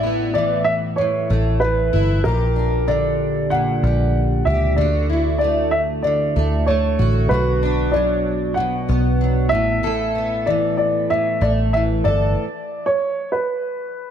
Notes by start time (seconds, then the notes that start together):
Already playing: A1 A2 E4 D5
0.03 B3
0.34 E3 D5
0.64 E5
0.96 A2 C#5
1.30 A1 A3
1.60 E3 B4
1.93 G1 E4
2.24 A#1 A#2 G4 A#4
2.56 D4
2.88 D3 D5
3.50 A#2 F#5
3.83 A#1 G3
4.45 C#2 G4 E5
4.76 D2 D3 F#4 D5
5.10 E4
5.38 A3 D5
5.71 E5
6.03 D3 D5
6.36 D2 A3
6.66 A3 C#5
6.99 A1 F#4
7.29 B1 B2 F#4 B4
7.63 D4
7.91 F#3 D5
8.54 B2 F#5
8.89 B1 B3
9.21 F#3
9.49 A1 A2 E5
9.83 A2 A4
10.15 B3
10.46 E3 D5
10.77 D5
11.10 A2 E5
11.41 A1 A3 D5
11.73 E3 E5
12.04 G1 A4 D5
12.86 C#5
13.32 B4